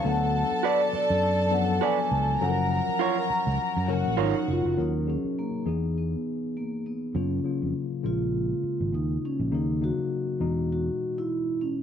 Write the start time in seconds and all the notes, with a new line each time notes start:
0.04 D2 F#3 B3 D4 A4 F#5 A5
0.51 muted fingered electric bass stroke
0.63 F#4 B4 D5
0.93 D5, muted fingered electric bass stroke
1.10 F#2
1.51 F3 B3 D4 A4 F#5
1.58 F#3
1.81 F#4 B4 D5 G#5
2.12 C#2
2.41 F#1 F3 F#3 C#4 A4 A#4 F#5 A#5
2.49 A#4
2.89 muted fingered electric bass stroke
2.99 F4 A#4 C#5
3.30 muted fingered electric bass stroke
3.47 C#2
3.77 F#2
3.88 F#1 F#3 C#4 F#4 A#4 F#5
4.06 A#1
4.17 G#1 F4 A#4 C#5
4.21 D#4
4.48 F#1 F4
4.65 F#1
4.77 D#2 F#3 C#4 D#4 A#4
5.07 F#3 C#4 D#4 G#4
5.24 muted fingered electric bass stroke
5.39 A#3
5.65 E2 E3 B3 D#4 G#4
5.98 B3
6.57 A#3
6.86 B3
7.15 F#2 C#3 F#3 A#3 C#4 F4
7.44 C#3 F#3 A#3 F4
7.62 F2
8.03 A#1 C#3 G#3 A#3 F4
8.63 muted fingered electric bass stroke
8.80 G#1
8.93 D#2 D#4
9.25 C#4
9.40 A#1
9.51 D#2 C#3 F#3 A#3 D#4
9.81 C#3 F#3 A#3 D#4 F#4
9.99 muted fingered electric bass stroke
10.40 E2 B2 E3 G#3 D#4
10.72 F#4
11.18 E4
11.61 C#4